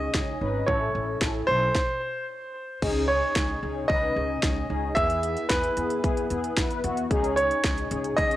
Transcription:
Already playing: analog polysynth C#4 D#4 G#4, grand piano D#5
0.14 upright bass C#2, analog polysynth C#4 D#4 G#4, kick, snare
0.41 upright bass G#1, analog polysynth C#4 D#4 B4
0.67 upright bass A1, analog polysynth C#4 E4 A4, grand piano C#5, kick
0.95 upright bass A1, analog polysynth C#4 E4 A4
1.21 upright bass A1, analog polysynth C#4 E4 A4, kick, snare
1.47 upright bass B1, analog polysynth C#4 E4 A4, grand piano C5
1.75 kick, snare
2.82 upright bass C#2, analog polysynth C#4 D#4 G#4, kick, crash
3.08 analog polysynth C#4 D#4 G#4, grand piano C#5
3.36 upright bass C#2, analog polysynth C#4 D#4 G#4, kick, snare
3.63 upright bass C#2, analog polysynth C#4 D#4 G#4
3.88 upright bass C#2, analog polysynth C#4 D#4 B4, grand piano D#5, kick
4.16 upright bass C#2, analog polysynth C#4 D#4 G#4
4.43 upright bass C#2, analog polysynth C#4 D#4 G#4, kick, snare
4.70 upright bass C#2, analog polysynth C#4 D#4 G#4
4.95 upright bass E2, analog polysynth B3 E4 G#4, grand piano E5, kick, closed hi-hat
5.10 closed hi-hat
5.23 analog polysynth B3 E4 G#4, closed hi-hat
5.37 closed hi-hat
5.49 upright bass E2, analog polysynth B3 E4 G#4, grand piano B4, kick, snare, closed hi-hat
5.63 closed hi-hat
5.77 upright bass E2, analog polysynth B3 E4 G#4, closed hi-hat
5.90 closed hi-hat
6.04 upright bass E2, analog polysynth B3 E4 G#4, kick, closed hi-hat
6.17 closed hi-hat
6.30 upright bass E2, analog polysynth B3 E4 G#4, closed hi-hat
6.44 closed hi-hat
6.57 upright bass E2, analog polysynth B3 E4 B4, kick, snare, closed hi-hat
6.71 closed hi-hat
6.84 upright bass E2, analog polysynth B3 E4 F#4, closed hi-hat
6.97 closed hi-hat
7.11 upright bass C#2, analog polysynth C#4 D#4 G#4, kick, closed hi-hat
7.24 closed hi-hat
7.36 analog polysynth C#4 D#4 G#4, grand piano C#5, closed hi-hat
7.51 closed hi-hat
7.64 upright bass C#2, analog polysynth C#4 D#4 G#4, kick, snare, closed hi-hat
7.78 closed hi-hat
7.91 upright bass C#2, analog polysynth C#4 D#4 G#4, closed hi-hat
8.04 closed hi-hat
8.17 upright bass C#2, analog polysynth C#4 D#4 G#4, grand piano D#5, kick, closed hi-hat
8.31 closed hi-hat

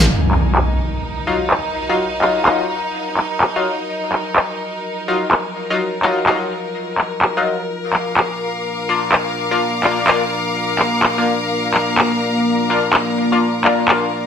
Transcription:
Already playing: string section G#5
0.08 string section D#4, analog synth pad F4 F#4 D#5, impact
0.27 string section A#4
0.31 clap
0.55 clap
1.27 synth stab F#3 D#4 F4
1.50 clap
1.89 synth stab F#3 D#4 F4
2.22 synth stab F#3 D#4 F4, clap
2.46 synth stab F#3 D#4 F4, clap
3.17 clap
3.41 clap
3.56 synth stab F#3 D#4 F4
4.12 clap
4.36 clap
5.08 synth stab F#3 D#4 F4
5.31 clap
5.70 synth stab F#3 D#4 F4
6.03 synth stab F#3 D#4 F4, clap
6.27 synth stab F#3 D#4 F4, clap
6.98 clap
7.22 clap
7.37 synth stab F#3 D#4 F4
7.70 analog synth pad A#3 D5
7.84 string section F5 D6
7.93 clap
8.17 string section A#5, clap
8.89 synth stab A#3 D4 F4
9.12 clap
9.51 synth stab A#3 D4 F4
9.84 synth stab A#3 D4 F4, clap
10.07 synth stab A#3 D4 F4, clap
10.79 clap
11.03 clap
11.18 synth stab A#3 D4 F4
11.74 clap
11.98 clap
12.70 synth stab A#3 D4 F4
12.93 clap
13.32 synth stab A#3 D4 F4
13.65 synth stab A#3 D4 F4, clap
13.88 synth stab A#3 D4 F4, clap

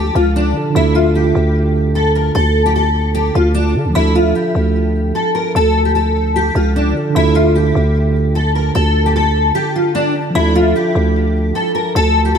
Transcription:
Already playing: 808-style bass D2, tine electric piano F3 D4 F4 A4, steel-string acoustic guitar G4
0.15 808-style bass C#2, steel-string acoustic guitar F4
0.36 steel-string acoustic guitar D4
0.53 tine electric piano D3 D4 F4
0.57 tine electric piano A4
0.70 tine electric piano D3 D4
0.75 808-style bass D2, steel-string acoustic guitar E4, tine electric piano F4 A4
0.95 steel-string acoustic guitar F4
1.15 steel-string acoustic guitar G4
1.35 808-style bass D2
1.95 steel-string acoustic guitar A4
2.15 steel-string acoustic guitar A#4
2.35 808-style bass D2, steel-string acoustic guitar A4
2.66 steel-string acoustic guitar G4
2.76 steel-string acoustic guitar A4
3.15 steel-string acoustic guitar G4
3.35 808-style bass D2, steel-string acoustic guitar F4
3.54 steel-string acoustic guitar D4
3.75 808-style bass D3
3.85 808-style bass D2
3.90 tine electric piano F3 D4
3.95 808-style bass D2, steel-string acoustic guitar E4, tine electric piano F4
3.99 tine electric piano A4
4.15 steel-string acoustic guitar F4
4.35 steel-string acoustic guitar G4
4.55 808-style bass D2
5.15 steel-string acoustic guitar A4
5.35 steel-string acoustic guitar A#4
5.55 808-style bass D2, steel-string acoustic guitar A4
5.85 steel-string acoustic guitar G4
5.95 steel-string acoustic guitar A4
6.36 steel-string acoustic guitar G4
6.55 808-style bass C#2, steel-string acoustic guitar F4
6.76 steel-string acoustic guitar D4
6.93 tine electric piano D3 D4 F4
6.97 tine electric piano A4
7.10 tine electric piano D3 D4
7.15 808-style bass D2, steel-string acoustic guitar E4, tine electric piano F4 A4
7.35 steel-string acoustic guitar F4
7.55 steel-string acoustic guitar G4
7.75 808-style bass D2
8.35 steel-string acoustic guitar A4
8.55 steel-string acoustic guitar A#4
8.75 808-style bass D2, steel-string acoustic guitar A4
9.06 steel-string acoustic guitar G4
9.16 steel-string acoustic guitar A4
9.55 steel-string acoustic guitar G4
9.76 steel-string acoustic guitar F4
9.95 steel-string acoustic guitar D4
10.30 tine electric piano F3 D4
10.35 808-style bass D2, steel-string acoustic guitar E4, tine electric piano F4
10.39 tine electric piano A4
10.55 steel-string acoustic guitar F4
10.76 steel-string acoustic guitar G4
10.95 808-style bass D2
11.55 steel-string acoustic guitar A4
11.75 steel-string acoustic guitar A#4
11.95 808-style bass D2, steel-string acoustic guitar A4
12.25 steel-string acoustic guitar G4
12.35 steel-string acoustic guitar A4

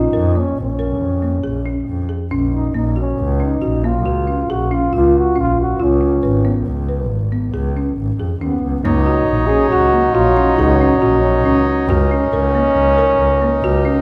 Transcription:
Already playing: marimba C#4, trombone D#4
0.13 double bass F2, marimba A#4
0.35 marimba A#3, trombone C#4
0.58 double bass A#1, trombone C#4
0.79 marimba A#4
1.01 double bass F2
1.22 marimba A#3
1.44 double bass A#1, marimba G#4
1.66 marimba C#4
1.88 double bass F2
2.09 marimba G#4
2.31 double bass A#1, marimba C#4
2.54 trombone D#4
2.74 double bass A#1, marimba A#3, trombone D#4
2.96 marimba F#4
3.01 trombone C#4
3.18 double bass C#2
3.40 marimba C#4
3.44 trombone D#4
3.62 double bass A#1, marimba F#4
3.84 marimba A#3, trombone F4
4.06 double bass C#2, marimba F#4
4.27 marimba C#4
4.50 double bass A#1, trombone F#4, marimba G#4
4.71 marimba C#4, trombone F4
4.93 double bass C#2, marimba F4, trombone F4
5.18 trombone F#4
5.36 double bass A#1, marimba C#4
5.40 trombone F4
5.61 trombone F#4
5.80 double bass C#2, trombone C#4, marimba F4
6.01 marimba C#4
6.23 double bass G#1, marimba B4
6.45 marimba B3
6.66 double bass C#2
6.89 marimba B4
7.10 double bass G#1
7.32 marimba B3
7.54 double bass C#2, marimba G#4
7.77 marimba C#4
7.97 double bass G#1
8.19 double bass F2, marimba G#4
8.41 double bass D#2, trombone B3, marimba C#4
8.63 double bass C#2
8.84 double bass C#2, french horn F#3, marimba A#3, trombone D#4, harmonium D#4 C#5 D#5, frame drum
9.06 marimba F#4
9.28 double bass A#1
9.47 marimba C#4, trombone G#4
9.70 double bass C#2, trombone F#4, marimba F#4, frame drum
9.93 marimba A#3
10.13 double bass A#1, trombone F4, marimba F#4
10.37 marimba C#4, frame drum
10.57 double bass C#2, trombone D#4, marimba G#4
10.80 marimba C#4, frame drum
11.00 double bass A#1, trombone C#4, marimba F#4
11.22 trombone C#4
11.45 double bass C#2, marimba C#4, frame drum
11.88 double bass C#2, french horn C#4, marimba F#4, harmonium A#4, frame drum
12.11 marimba C#4
12.32 double bass C#2, marimba A#4
12.55 marimba A#3
12.75 double bass C#2, frame drum
12.98 marimba A#4
13.19 double bass C#2
13.42 marimba A#3
13.62 double bass C#2, marimba F#4
13.85 marimba C#4, frame drum

